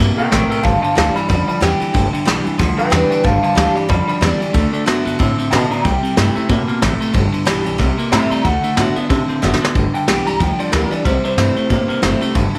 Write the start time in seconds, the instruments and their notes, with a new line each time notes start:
Already playing: steel-string acoustic guitar B2
0.00 upright bass G2, clean electric guitar C3 A#3
0.17 clean electric guitar C3 A#3 A#4 G5, muted upright bass stroke, ride
0.31 upright bass A1, steel-string acoustic guitar A2, clean electric guitar C3 A3 A#4 G5, snare, ride
0.49 clean electric guitar C3 A3 A#4 G5, muted upright bass stroke, ride
0.63 upright bass G1, steel-string acoustic guitar G2, clean electric guitar G2 D3 F5 A5, kick, ride
0.82 clean electric guitar G2 D3 F5 A5, muted upright bass stroke, ride
0.95 upright bass D2, clean electric guitar G2 E3 F5 A5, steel-string acoustic guitar G3 B3 D4 G4, snare, ride
1.14 clean electric guitar G2 E3 D5 B5, steel-string acoustic guitar D4 G4, ride
1.28 upright bass F2, clean electric guitar G2 F3 D5 B5, steel-string acoustic guitar D3, kick, ride
1.48 clean electric guitar G2 F3 D5 B5, muted upright bass stroke, ride
1.60 upright bass E2, clean electric guitar G2 E3 G5, steel-string acoustic guitar G3 B3 D4 G4, snare, ride
1.80 clean electric guitar G2 E3, steel-string acoustic guitar D4 G4, muted upright bass stroke, ride
1.93 upright bass G1, clean electric guitar G2 D3, steel-string acoustic guitar G2, kick, ride
2.13 clean electric guitar G2 D3, muted upright bass stroke, ride
2.25 upright bass B1, clean electric guitar G2 E3, steel-string acoustic guitar G3 B3 D4 G4, snare, ride
2.44 upright bass C2, clean electric guitar G2 E3, steel-string acoustic guitar D4 G4, ride
2.58 upright bass D2, clean electric guitar G2 F3, steel-string acoustic guitar D3, kick, snare, ride
2.77 clean electric guitar G2 F3 B4 G5, muted upright bass stroke, ride
2.90 upright bass E2, clean electric guitar G2 E3 B4 G5, steel-string acoustic guitar G3 B3 D4 G4, snare, ride
3.10 clean electric guitar G2 E3 B4 G5, muted upright bass stroke, ride
3.24 upright bass G1, clean electric guitar G2 D3 F5 A5, steel-string acoustic guitar G2, kick, ride
3.42 clean electric guitar G2 D3 F5 A5, ride
3.55 upright bass D2, clean electric guitar G2 E3 F5, steel-string acoustic guitar G3 B3 D4 G4, snare, ride
3.75 clean electric guitar G2 E3 D5 B5, steel-string acoustic guitar D4 G4, muted upright bass stroke, ride
3.89 upright bass F2, clean electric guitar G2 F3 D5 B5, steel-string acoustic guitar D3, kick, ride
4.07 clean electric guitar G2 F3 D5 B5, muted upright bass stroke, ride
4.21 upright bass E2, clean electric guitar G2 E3 D5, steel-string acoustic guitar G3 B3 D4 G4, snare, ride
4.40 clean electric guitar G2 E3, steel-string acoustic guitar D4 G4, ride
4.53 upright bass D2, clean electric guitar D3 A3, steel-string acoustic guitar D3, kick, ride
4.72 clean electric guitar D3 A3, ride
4.86 upright bass F#2, clean electric guitar D3 B3, steel-string acoustic guitar D3 A3 D4 F#4, snare, ride
5.05 upright bass G2, clean electric guitar D3 B3, steel-string acoustic guitar D4 F#4, ride
5.19 steel-string acoustic guitar A2, upright bass A2, clean electric guitar D3 C4, kick, ride
5.38 clean electric guitar D3 C4, muted upright bass stroke, ride
5.51 upright bass B2, clean electric guitar D3 B3 A5 C6, steel-string acoustic guitar D3 A3 D4 F#4, snare, ride
5.70 clean electric guitar D3 B3 D5 A#5, steel-string acoustic guitar D4 F#4, muted upright bass stroke, ride
5.83 upright bass C2, steel-string acoustic guitar C3, clean electric guitar C3 G3 G5, kick, ride
6.03 clean electric guitar C3 G3, ride
6.16 upright bass G2, clean electric guitar C3 A3, steel-string acoustic guitar E3 G3 C4 E4, snare, ride
6.35 clean electric guitar C3 A3, steel-string acoustic guitar C4 E4, muted upright bass stroke, ride
6.49 upright bass A2, steel-string acoustic guitar B2, clean electric guitar C3 A#3, kick, ride
6.68 clean electric guitar C3 A#3, muted upright bass stroke, ride
6.82 upright bass A1, steel-string acoustic guitar A2, clean electric guitar C3 A3, snare, ride
7.00 clean electric guitar C3 A3, muted upright bass stroke, ride
7.13 upright bass G1, clean electric guitar G2 D3, steel-string acoustic guitar G2, kick, ride
7.32 clean electric guitar G2 D3, muted upright bass stroke, ride
7.45 upright bass B1, clean electric guitar G2 E3, steel-string acoustic guitar G3 B3 D4 G4, snare, ride
7.64 upright bass B1, clean electric guitar G2 E3, steel-string acoustic guitar D4 G4, ride
7.78 upright bass C2, steel-string acoustic guitar C3, clean electric guitar C3 G3, kick, snare, ride
7.98 clean electric guitar C3 A#3, muted upright bass stroke, ride
8.12 upright bass A2, clean electric guitar C3 A3 E5 C6, steel-string acoustic guitar E3 G3 C4 E4, snare, ride
8.30 clean electric guitar C3 A3 D5 A#5, muted upright bass stroke, ride
8.44 upright bass D2, clean electric guitar D3 A3 F#5, steel-string acoustic guitar D3, kick, ride
8.63 clean electric guitar D3 A3, muted upright bass stroke, ride
8.76 upright bass A2, clean electric guitar D3 B3, steel-string acoustic guitar D3 A3 D4 F#4, snare, ride
8.96 clean electric guitar D3 B3, steel-string acoustic guitar D4 F#4, muted upright bass stroke, ride
9.09 steel-string acoustic guitar A2, upright bass C3, clean electric guitar D3 C4, kick, snare, ride
9.28 clean electric guitar D3 C4, muted upright bass stroke, ride
9.42 upright bass F#1, clean electric guitar D3 B3, steel-string acoustic guitar D3 A3 D4 F#4, snare
9.53 snare
9.61 clean electric guitar D3 B3, steel-string acoustic guitar D4 F#4, muted upright bass stroke, snare
9.75 upright bass G1, clean electric guitar G2 D3, steel-string acoustic guitar G2, kick, ride
9.94 clean electric guitar G2 D3 G5, muted upright bass stroke, ride
10.07 upright bass B1, clean electric guitar G2 E3, steel-string acoustic guitar G3 B3 D4 G4, snare, ride
10.26 upright bass C2, clean electric guitar G2 E3 A#5, steel-string acoustic guitar D4 G4, ride
10.39 upright bass D2, clean electric guitar G2 F3 G5, steel-string acoustic guitar D3, kick, ride
10.59 clean electric guitar G2 F3 D5, muted upright bass stroke, ride
10.72 upright bass D2, clean electric guitar G2 E3 A#4, steel-string acoustic guitar G3 B3 D4 G4, snare, ride
10.91 clean electric guitar G2 E3 D5, steel-string acoustic guitar D4 G4, muted upright bass stroke, ride
11.04 upright bass C2, clean electric guitar C3 G3 C5, steel-string acoustic guitar C3, kick, ride
11.24 clean electric guitar C3 G3 C5, ride
11.37 upright bass G2, clean electric guitar C3 A3, steel-string acoustic guitar E3 G3 C4 E4, snare, ride
11.56 clean electric guitar C3 A3, steel-string acoustic guitar C4 E4, muted upright bass stroke, ride
11.69 steel-string acoustic guitar G2, upright bass A2, clean electric guitar C3 A#3, kick, ride
11.88 clean electric guitar C3 A#3, muted upright bass stroke, ride
12.02 upright bass F#1, clean electric guitar C3 A3, steel-string acoustic guitar E3 G3 C4 E4, snare, ride
12.21 clean electric guitar C3 A3, steel-string acoustic guitar C4 E4, muted upright bass stroke, ride
12.35 upright bass G1, clean electric guitar G2 D3, steel-string acoustic guitar G2, kick, ride
12.54 clean electric guitar G2 D3, muted upright bass stroke, ride